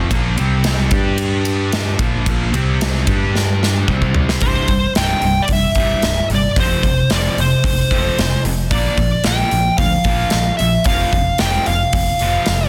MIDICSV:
0, 0, Header, 1, 5, 480
1, 0, Start_track
1, 0, Tempo, 537634
1, 96, Time_signature, 4, 2, 24, 8
1, 11328, End_track
2, 0, Start_track
2, 0, Title_t, "Lead electric guitar"
2, 0, Program_c, 0, 29
2, 3949, Note_on_c, 0, 72, 97
2, 4390, Note_off_c, 0, 72, 0
2, 4439, Note_on_c, 0, 79, 88
2, 4842, Note_on_c, 0, 74, 72
2, 4858, Note_off_c, 0, 79, 0
2, 4901, Note_off_c, 0, 74, 0
2, 4934, Note_on_c, 0, 76, 94
2, 5600, Note_off_c, 0, 76, 0
2, 5668, Note_on_c, 0, 74, 80
2, 5889, Note_off_c, 0, 74, 0
2, 5894, Note_on_c, 0, 72, 88
2, 6324, Note_off_c, 0, 72, 0
2, 6377, Note_on_c, 0, 74, 87
2, 6604, Note_off_c, 0, 74, 0
2, 6616, Note_on_c, 0, 72, 67
2, 7522, Note_off_c, 0, 72, 0
2, 7778, Note_on_c, 0, 74, 84
2, 8272, Note_off_c, 0, 74, 0
2, 8279, Note_on_c, 0, 79, 98
2, 8715, Note_off_c, 0, 79, 0
2, 8732, Note_on_c, 0, 77, 98
2, 9434, Note_off_c, 0, 77, 0
2, 9437, Note_on_c, 0, 76, 75
2, 9669, Note_off_c, 0, 76, 0
2, 9699, Note_on_c, 0, 77, 93
2, 10181, Note_off_c, 0, 77, 0
2, 10184, Note_on_c, 0, 79, 87
2, 10420, Note_off_c, 0, 79, 0
2, 10423, Note_on_c, 0, 77, 70
2, 11328, Note_off_c, 0, 77, 0
2, 11328, End_track
3, 0, Start_track
3, 0, Title_t, "Distorted electric guitar"
3, 0, Program_c, 1, 30
3, 102, Note_on_c, 1, 46, 82
3, 108, Note_on_c, 1, 53, 88
3, 115, Note_on_c, 1, 58, 110
3, 330, Note_off_c, 1, 53, 0
3, 331, Note_off_c, 1, 58, 0
3, 332, Note_off_c, 1, 46, 0
3, 334, Note_on_c, 1, 48, 75
3, 334, Note_on_c, 1, 55, 86
3, 347, Note_on_c, 1, 60, 87
3, 808, Note_off_c, 1, 48, 0
3, 808, Note_off_c, 1, 55, 0
3, 814, Note_off_c, 1, 60, 0
3, 821, Note_on_c, 1, 55, 81
3, 824, Note_on_c, 1, 62, 94
3, 830, Note_on_c, 1, 67, 101
3, 1771, Note_off_c, 1, 55, 0
3, 1773, Note_off_c, 1, 62, 0
3, 1773, Note_on_c, 1, 46, 79
3, 1776, Note_off_c, 1, 67, 0
3, 1779, Note_on_c, 1, 53, 83
3, 1783, Note_on_c, 1, 58, 83
3, 2007, Note_off_c, 1, 46, 0
3, 2010, Note_off_c, 1, 53, 0
3, 2012, Note_off_c, 1, 58, 0
3, 2028, Note_on_c, 1, 46, 85
3, 2032, Note_on_c, 1, 53, 98
3, 2037, Note_on_c, 1, 58, 104
3, 2246, Note_off_c, 1, 53, 0
3, 2249, Note_on_c, 1, 48, 94
3, 2250, Note_off_c, 1, 58, 0
3, 2254, Note_on_c, 1, 55, 80
3, 2255, Note_off_c, 1, 46, 0
3, 2259, Note_on_c, 1, 60, 90
3, 2726, Note_off_c, 1, 48, 0
3, 2728, Note_off_c, 1, 55, 0
3, 2730, Note_off_c, 1, 60, 0
3, 2746, Note_on_c, 1, 62, 92
3, 2748, Note_on_c, 1, 55, 85
3, 2750, Note_on_c, 1, 67, 98
3, 3454, Note_off_c, 1, 62, 0
3, 3455, Note_off_c, 1, 55, 0
3, 3455, Note_on_c, 1, 48, 67
3, 3456, Note_off_c, 1, 67, 0
3, 3464, Note_on_c, 1, 55, 87
3, 3467, Note_on_c, 1, 60, 81
3, 3929, Note_off_c, 1, 48, 0
3, 3933, Note_off_c, 1, 55, 0
3, 3935, Note_off_c, 1, 60, 0
3, 3942, Note_on_c, 1, 36, 76
3, 3958, Note_on_c, 1, 43, 70
3, 3961, Note_on_c, 1, 48, 93
3, 4165, Note_off_c, 1, 36, 0
3, 4173, Note_off_c, 1, 43, 0
3, 4174, Note_off_c, 1, 48, 0
3, 4189, Note_on_c, 1, 36, 59
3, 4197, Note_on_c, 1, 43, 64
3, 4399, Note_off_c, 1, 36, 0
3, 4403, Note_off_c, 1, 43, 0
3, 4430, Note_on_c, 1, 36, 85
3, 4436, Note_on_c, 1, 43, 91
3, 4443, Note_on_c, 1, 48, 91
3, 4649, Note_off_c, 1, 36, 0
3, 4652, Note_off_c, 1, 43, 0
3, 4656, Note_off_c, 1, 48, 0
3, 4672, Note_on_c, 1, 36, 61
3, 4676, Note_on_c, 1, 43, 76
3, 4881, Note_off_c, 1, 36, 0
3, 4883, Note_off_c, 1, 43, 0
3, 4920, Note_on_c, 1, 36, 65
3, 4924, Note_on_c, 1, 43, 70
3, 5125, Note_off_c, 1, 36, 0
3, 5127, Note_off_c, 1, 43, 0
3, 5150, Note_on_c, 1, 36, 76
3, 5158, Note_on_c, 1, 43, 87
3, 5162, Note_on_c, 1, 48, 89
3, 5370, Note_off_c, 1, 36, 0
3, 5373, Note_off_c, 1, 43, 0
3, 5376, Note_off_c, 1, 48, 0
3, 5391, Note_on_c, 1, 43, 77
3, 5393, Note_on_c, 1, 36, 65
3, 5600, Note_off_c, 1, 43, 0
3, 5602, Note_off_c, 1, 36, 0
3, 5638, Note_on_c, 1, 36, 54
3, 5646, Note_on_c, 1, 43, 58
3, 5844, Note_off_c, 1, 36, 0
3, 5848, Note_off_c, 1, 43, 0
3, 5869, Note_on_c, 1, 41, 82
3, 5875, Note_on_c, 1, 53, 86
3, 5877, Note_on_c, 1, 48, 81
3, 6089, Note_off_c, 1, 41, 0
3, 6092, Note_off_c, 1, 53, 0
3, 6093, Note_off_c, 1, 48, 0
3, 6110, Note_on_c, 1, 41, 58
3, 6118, Note_on_c, 1, 48, 69
3, 6320, Note_off_c, 1, 41, 0
3, 6324, Note_off_c, 1, 48, 0
3, 6348, Note_on_c, 1, 41, 86
3, 6350, Note_on_c, 1, 48, 85
3, 6355, Note_on_c, 1, 53, 84
3, 6569, Note_off_c, 1, 41, 0
3, 6570, Note_off_c, 1, 48, 0
3, 6572, Note_off_c, 1, 53, 0
3, 6583, Note_on_c, 1, 41, 60
3, 6584, Note_on_c, 1, 48, 73
3, 6797, Note_off_c, 1, 41, 0
3, 6797, Note_off_c, 1, 48, 0
3, 6822, Note_on_c, 1, 41, 56
3, 6825, Note_on_c, 1, 48, 76
3, 7036, Note_off_c, 1, 41, 0
3, 7038, Note_off_c, 1, 48, 0
3, 7061, Note_on_c, 1, 41, 82
3, 7066, Note_on_c, 1, 48, 82
3, 7071, Note_on_c, 1, 53, 93
3, 7286, Note_off_c, 1, 41, 0
3, 7288, Note_off_c, 1, 48, 0
3, 7290, Note_off_c, 1, 53, 0
3, 7302, Note_on_c, 1, 41, 69
3, 7309, Note_on_c, 1, 48, 65
3, 7516, Note_off_c, 1, 41, 0
3, 7520, Note_off_c, 1, 48, 0
3, 7542, Note_on_c, 1, 41, 61
3, 7545, Note_on_c, 1, 48, 59
3, 7756, Note_off_c, 1, 41, 0
3, 7757, Note_off_c, 1, 48, 0
3, 7781, Note_on_c, 1, 46, 78
3, 7791, Note_on_c, 1, 58, 96
3, 7792, Note_on_c, 1, 53, 79
3, 8005, Note_off_c, 1, 46, 0
3, 8007, Note_off_c, 1, 53, 0
3, 8010, Note_off_c, 1, 58, 0
3, 8018, Note_on_c, 1, 53, 69
3, 8023, Note_on_c, 1, 46, 67
3, 8234, Note_off_c, 1, 53, 0
3, 8237, Note_off_c, 1, 46, 0
3, 8257, Note_on_c, 1, 46, 88
3, 8263, Note_on_c, 1, 53, 80
3, 8266, Note_on_c, 1, 58, 98
3, 8483, Note_off_c, 1, 46, 0
3, 8486, Note_off_c, 1, 53, 0
3, 8488, Note_off_c, 1, 58, 0
3, 8501, Note_on_c, 1, 46, 67
3, 8503, Note_on_c, 1, 53, 68
3, 8715, Note_off_c, 1, 46, 0
3, 8716, Note_off_c, 1, 53, 0
3, 8738, Note_on_c, 1, 46, 69
3, 8743, Note_on_c, 1, 53, 76
3, 8954, Note_off_c, 1, 46, 0
3, 8956, Note_off_c, 1, 53, 0
3, 8980, Note_on_c, 1, 46, 80
3, 8988, Note_on_c, 1, 53, 90
3, 8990, Note_on_c, 1, 58, 92
3, 9197, Note_off_c, 1, 46, 0
3, 9208, Note_off_c, 1, 53, 0
3, 9208, Note_on_c, 1, 46, 64
3, 9209, Note_off_c, 1, 58, 0
3, 9219, Note_on_c, 1, 53, 65
3, 9428, Note_off_c, 1, 46, 0
3, 9434, Note_off_c, 1, 53, 0
3, 9462, Note_on_c, 1, 46, 60
3, 9466, Note_on_c, 1, 53, 68
3, 9675, Note_off_c, 1, 46, 0
3, 9677, Note_off_c, 1, 53, 0
3, 9703, Note_on_c, 1, 41, 76
3, 9710, Note_on_c, 1, 48, 92
3, 9711, Note_on_c, 1, 53, 87
3, 9925, Note_off_c, 1, 41, 0
3, 9929, Note_off_c, 1, 48, 0
3, 9929, Note_off_c, 1, 53, 0
3, 9953, Note_on_c, 1, 41, 63
3, 9958, Note_on_c, 1, 48, 71
3, 10160, Note_off_c, 1, 41, 0
3, 10163, Note_off_c, 1, 48, 0
3, 10187, Note_on_c, 1, 41, 76
3, 10187, Note_on_c, 1, 48, 89
3, 10195, Note_on_c, 1, 53, 89
3, 10406, Note_off_c, 1, 41, 0
3, 10407, Note_off_c, 1, 48, 0
3, 10411, Note_off_c, 1, 53, 0
3, 10430, Note_on_c, 1, 48, 70
3, 10431, Note_on_c, 1, 41, 62
3, 10638, Note_off_c, 1, 48, 0
3, 10639, Note_off_c, 1, 41, 0
3, 10666, Note_on_c, 1, 41, 64
3, 10672, Note_on_c, 1, 48, 69
3, 10876, Note_off_c, 1, 41, 0
3, 10879, Note_off_c, 1, 48, 0
3, 10898, Note_on_c, 1, 41, 80
3, 10903, Note_on_c, 1, 48, 83
3, 10912, Note_on_c, 1, 53, 91
3, 11122, Note_off_c, 1, 41, 0
3, 11124, Note_off_c, 1, 48, 0
3, 11128, Note_off_c, 1, 53, 0
3, 11140, Note_on_c, 1, 41, 56
3, 11144, Note_on_c, 1, 48, 61
3, 11328, Note_off_c, 1, 41, 0
3, 11328, Note_off_c, 1, 48, 0
3, 11328, End_track
4, 0, Start_track
4, 0, Title_t, "Picked electric bass"
4, 0, Program_c, 2, 34
4, 96, Note_on_c, 2, 34, 91
4, 320, Note_off_c, 2, 34, 0
4, 354, Note_on_c, 2, 36, 91
4, 792, Note_off_c, 2, 36, 0
4, 820, Note_on_c, 2, 43, 92
4, 1742, Note_off_c, 2, 43, 0
4, 1777, Note_on_c, 2, 34, 84
4, 2000, Note_off_c, 2, 34, 0
4, 2020, Note_on_c, 2, 34, 91
4, 2241, Note_off_c, 2, 34, 0
4, 2263, Note_on_c, 2, 36, 91
4, 2706, Note_off_c, 2, 36, 0
4, 2749, Note_on_c, 2, 43, 75
4, 3427, Note_off_c, 2, 43, 0
4, 3470, Note_on_c, 2, 36, 82
4, 3910, Note_off_c, 2, 36, 0
4, 3945, Note_on_c, 2, 24, 90
4, 4096, Note_off_c, 2, 24, 0
4, 4182, Note_on_c, 2, 24, 78
4, 4334, Note_off_c, 2, 24, 0
4, 4426, Note_on_c, 2, 24, 83
4, 4577, Note_off_c, 2, 24, 0
4, 4661, Note_on_c, 2, 24, 72
4, 4813, Note_off_c, 2, 24, 0
4, 4903, Note_on_c, 2, 29, 77
4, 5055, Note_off_c, 2, 29, 0
4, 5139, Note_on_c, 2, 24, 84
4, 5293, Note_off_c, 2, 24, 0
4, 5379, Note_on_c, 2, 24, 86
4, 5532, Note_off_c, 2, 24, 0
4, 5622, Note_on_c, 2, 31, 73
4, 5775, Note_off_c, 2, 31, 0
4, 5863, Note_on_c, 2, 29, 85
4, 6015, Note_off_c, 2, 29, 0
4, 6104, Note_on_c, 2, 29, 81
4, 6256, Note_off_c, 2, 29, 0
4, 6345, Note_on_c, 2, 29, 84
4, 6496, Note_off_c, 2, 29, 0
4, 6579, Note_on_c, 2, 29, 75
4, 6733, Note_off_c, 2, 29, 0
4, 6822, Note_on_c, 2, 29, 82
4, 6974, Note_off_c, 2, 29, 0
4, 7062, Note_on_c, 2, 29, 73
4, 7215, Note_off_c, 2, 29, 0
4, 7309, Note_on_c, 2, 29, 85
4, 7460, Note_off_c, 2, 29, 0
4, 7540, Note_on_c, 2, 29, 92
4, 7780, Note_on_c, 2, 34, 89
4, 7794, Note_off_c, 2, 29, 0
4, 7933, Note_off_c, 2, 34, 0
4, 8018, Note_on_c, 2, 34, 78
4, 8172, Note_off_c, 2, 34, 0
4, 8265, Note_on_c, 2, 34, 88
4, 8416, Note_off_c, 2, 34, 0
4, 8499, Note_on_c, 2, 34, 83
4, 8652, Note_off_c, 2, 34, 0
4, 8738, Note_on_c, 2, 38, 86
4, 8892, Note_off_c, 2, 38, 0
4, 8971, Note_on_c, 2, 34, 79
4, 9127, Note_off_c, 2, 34, 0
4, 9228, Note_on_c, 2, 34, 86
4, 9378, Note_off_c, 2, 34, 0
4, 9469, Note_on_c, 2, 34, 75
4, 9619, Note_off_c, 2, 34, 0
4, 9694, Note_on_c, 2, 29, 88
4, 9849, Note_off_c, 2, 29, 0
4, 9933, Note_on_c, 2, 29, 83
4, 10088, Note_off_c, 2, 29, 0
4, 10178, Note_on_c, 2, 29, 82
4, 10331, Note_off_c, 2, 29, 0
4, 10423, Note_on_c, 2, 29, 73
4, 10574, Note_off_c, 2, 29, 0
4, 10660, Note_on_c, 2, 29, 85
4, 10812, Note_off_c, 2, 29, 0
4, 10891, Note_on_c, 2, 29, 73
4, 11045, Note_off_c, 2, 29, 0
4, 11142, Note_on_c, 2, 29, 78
4, 11293, Note_off_c, 2, 29, 0
4, 11328, End_track
5, 0, Start_track
5, 0, Title_t, "Drums"
5, 96, Note_on_c, 9, 36, 95
5, 100, Note_on_c, 9, 51, 96
5, 185, Note_off_c, 9, 36, 0
5, 189, Note_off_c, 9, 51, 0
5, 335, Note_on_c, 9, 51, 61
5, 424, Note_off_c, 9, 51, 0
5, 571, Note_on_c, 9, 51, 90
5, 577, Note_on_c, 9, 38, 107
5, 660, Note_off_c, 9, 51, 0
5, 667, Note_off_c, 9, 38, 0
5, 811, Note_on_c, 9, 51, 73
5, 816, Note_on_c, 9, 36, 111
5, 900, Note_off_c, 9, 51, 0
5, 905, Note_off_c, 9, 36, 0
5, 1052, Note_on_c, 9, 51, 92
5, 1141, Note_off_c, 9, 51, 0
5, 1296, Note_on_c, 9, 51, 73
5, 1385, Note_off_c, 9, 51, 0
5, 1540, Note_on_c, 9, 51, 91
5, 1546, Note_on_c, 9, 38, 109
5, 1629, Note_off_c, 9, 51, 0
5, 1635, Note_off_c, 9, 38, 0
5, 1778, Note_on_c, 9, 36, 102
5, 1778, Note_on_c, 9, 51, 65
5, 1867, Note_off_c, 9, 36, 0
5, 1867, Note_off_c, 9, 51, 0
5, 2020, Note_on_c, 9, 36, 105
5, 2023, Note_on_c, 9, 51, 93
5, 2110, Note_off_c, 9, 36, 0
5, 2112, Note_off_c, 9, 51, 0
5, 2267, Note_on_c, 9, 51, 63
5, 2356, Note_off_c, 9, 51, 0
5, 2511, Note_on_c, 9, 51, 104
5, 2517, Note_on_c, 9, 38, 117
5, 2600, Note_off_c, 9, 51, 0
5, 2606, Note_off_c, 9, 38, 0
5, 2741, Note_on_c, 9, 51, 77
5, 2742, Note_on_c, 9, 36, 98
5, 2831, Note_off_c, 9, 36, 0
5, 2831, Note_off_c, 9, 51, 0
5, 2995, Note_on_c, 9, 38, 65
5, 3084, Note_off_c, 9, 38, 0
5, 3241, Note_on_c, 9, 38, 73
5, 3330, Note_off_c, 9, 38, 0
5, 3465, Note_on_c, 9, 36, 81
5, 3554, Note_off_c, 9, 36, 0
5, 3587, Note_on_c, 9, 36, 69
5, 3676, Note_off_c, 9, 36, 0
5, 3700, Note_on_c, 9, 43, 89
5, 3790, Note_off_c, 9, 43, 0
5, 3831, Note_on_c, 9, 38, 91
5, 3920, Note_off_c, 9, 38, 0
5, 3933, Note_on_c, 9, 46, 64
5, 3942, Note_on_c, 9, 36, 103
5, 4022, Note_off_c, 9, 46, 0
5, 4031, Note_off_c, 9, 36, 0
5, 4176, Note_on_c, 9, 46, 49
5, 4182, Note_on_c, 9, 36, 76
5, 4265, Note_off_c, 9, 46, 0
5, 4271, Note_off_c, 9, 36, 0
5, 4422, Note_on_c, 9, 46, 64
5, 4428, Note_on_c, 9, 38, 105
5, 4511, Note_off_c, 9, 46, 0
5, 4517, Note_off_c, 9, 38, 0
5, 4658, Note_on_c, 9, 46, 48
5, 4747, Note_off_c, 9, 46, 0
5, 4891, Note_on_c, 9, 46, 73
5, 4899, Note_on_c, 9, 36, 93
5, 4980, Note_off_c, 9, 46, 0
5, 4988, Note_off_c, 9, 36, 0
5, 5132, Note_on_c, 9, 46, 53
5, 5138, Note_on_c, 9, 36, 74
5, 5221, Note_off_c, 9, 46, 0
5, 5228, Note_off_c, 9, 36, 0
5, 5378, Note_on_c, 9, 46, 63
5, 5385, Note_on_c, 9, 38, 100
5, 5468, Note_off_c, 9, 46, 0
5, 5474, Note_off_c, 9, 38, 0
5, 5623, Note_on_c, 9, 46, 48
5, 5712, Note_off_c, 9, 46, 0
5, 5860, Note_on_c, 9, 36, 100
5, 5862, Note_on_c, 9, 46, 72
5, 5949, Note_off_c, 9, 36, 0
5, 5951, Note_off_c, 9, 46, 0
5, 6101, Note_on_c, 9, 36, 77
5, 6105, Note_on_c, 9, 46, 50
5, 6190, Note_off_c, 9, 36, 0
5, 6194, Note_off_c, 9, 46, 0
5, 6338, Note_on_c, 9, 46, 71
5, 6344, Note_on_c, 9, 38, 105
5, 6427, Note_off_c, 9, 46, 0
5, 6433, Note_off_c, 9, 38, 0
5, 6591, Note_on_c, 9, 46, 51
5, 6680, Note_off_c, 9, 46, 0
5, 6820, Note_on_c, 9, 36, 102
5, 6828, Note_on_c, 9, 46, 76
5, 6909, Note_off_c, 9, 36, 0
5, 6917, Note_off_c, 9, 46, 0
5, 7061, Note_on_c, 9, 36, 74
5, 7070, Note_on_c, 9, 46, 53
5, 7150, Note_off_c, 9, 36, 0
5, 7159, Note_off_c, 9, 46, 0
5, 7308, Note_on_c, 9, 46, 68
5, 7314, Note_on_c, 9, 38, 99
5, 7397, Note_off_c, 9, 46, 0
5, 7404, Note_off_c, 9, 38, 0
5, 7544, Note_on_c, 9, 46, 52
5, 7633, Note_off_c, 9, 46, 0
5, 7775, Note_on_c, 9, 36, 99
5, 7776, Note_on_c, 9, 46, 69
5, 7865, Note_off_c, 9, 36, 0
5, 7865, Note_off_c, 9, 46, 0
5, 8013, Note_on_c, 9, 46, 47
5, 8014, Note_on_c, 9, 36, 80
5, 8102, Note_off_c, 9, 46, 0
5, 8103, Note_off_c, 9, 36, 0
5, 8247, Note_on_c, 9, 46, 71
5, 8253, Note_on_c, 9, 38, 112
5, 8336, Note_off_c, 9, 46, 0
5, 8342, Note_off_c, 9, 38, 0
5, 8493, Note_on_c, 9, 46, 52
5, 8583, Note_off_c, 9, 46, 0
5, 8731, Note_on_c, 9, 46, 67
5, 8733, Note_on_c, 9, 36, 110
5, 8820, Note_off_c, 9, 46, 0
5, 8822, Note_off_c, 9, 36, 0
5, 8965, Note_on_c, 9, 46, 53
5, 8971, Note_on_c, 9, 36, 84
5, 9054, Note_off_c, 9, 46, 0
5, 9060, Note_off_c, 9, 36, 0
5, 9198, Note_on_c, 9, 46, 66
5, 9205, Note_on_c, 9, 38, 98
5, 9288, Note_off_c, 9, 46, 0
5, 9294, Note_off_c, 9, 38, 0
5, 9453, Note_on_c, 9, 46, 52
5, 9543, Note_off_c, 9, 46, 0
5, 9681, Note_on_c, 9, 46, 66
5, 9692, Note_on_c, 9, 36, 92
5, 9770, Note_off_c, 9, 46, 0
5, 9781, Note_off_c, 9, 36, 0
5, 9934, Note_on_c, 9, 36, 77
5, 9935, Note_on_c, 9, 46, 48
5, 10023, Note_off_c, 9, 36, 0
5, 10024, Note_off_c, 9, 46, 0
5, 10163, Note_on_c, 9, 46, 72
5, 10169, Note_on_c, 9, 38, 112
5, 10252, Note_off_c, 9, 46, 0
5, 10258, Note_off_c, 9, 38, 0
5, 10412, Note_on_c, 9, 46, 54
5, 10501, Note_off_c, 9, 46, 0
5, 10649, Note_on_c, 9, 46, 77
5, 10652, Note_on_c, 9, 36, 102
5, 10738, Note_off_c, 9, 46, 0
5, 10742, Note_off_c, 9, 36, 0
5, 10886, Note_on_c, 9, 46, 57
5, 10975, Note_off_c, 9, 46, 0
5, 11122, Note_on_c, 9, 46, 70
5, 11128, Note_on_c, 9, 38, 96
5, 11211, Note_off_c, 9, 46, 0
5, 11218, Note_off_c, 9, 38, 0
5, 11328, End_track
0, 0, End_of_file